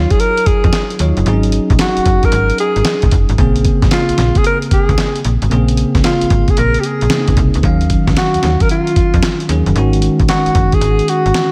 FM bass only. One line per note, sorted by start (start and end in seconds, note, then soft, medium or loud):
0.46 0.53 F2 soft
0.64 0.71 F2 medium
1.00 1.13 D#2 medium
1.17 1.24 F#1 medium
1.26 1.60 G#1 loud
1.70 1.77 A#1 loud
1.97 2.01 F#1 soft
2.06 2.19 F#1 medium
2.32 2.52 G#1 loud
2.76 2.83 G#1 medium
3.03 3.10 A#1 medium
3.12 3.25 F#1 medium
3.29 3.36 G#1 medium
3.38 3.72 A#1 medium
3.82 3.89 G#1 loud
4.09 4.13 A#1 soft
4.18 4.32 A#1 loud
4.71 4.78 C#2 medium
4.89 4.96 C#2 loud
5.25 5.38 A#1 medium
5.42 5.49 G#1 medium
5.51 5.85 A#1 loud
5.95 6.02 C#2 medium
6.22 6.26 G#1 soft
6.30 6.44 G#1 loud
6.58 6.78 A#1 medium
7.02 7.09 A#1 medium
7.28 7.35 C#2 medium
7.37 7.50 C2 loud
7.55 7.62 C#2 medium
7.64 7.97 D#2 loud
8.07 8.14 C#2 medium
8.35 8.38 D#2 soft
8.43 8.57 D#2 loud
8.96 9.03 F2 soft
9.14 9.21 F2 medium
9.49 9.63 D#2 medium
9.66 9.73 F#1 medium
9.76 10.09 G#1 loud
10.20 10.27 A#1 medium
10.46 10.50 F#1 soft
10.55 10.69 F#1 loud
10.81 11.02 G#1 medium
11.26 11.33 G#1 medium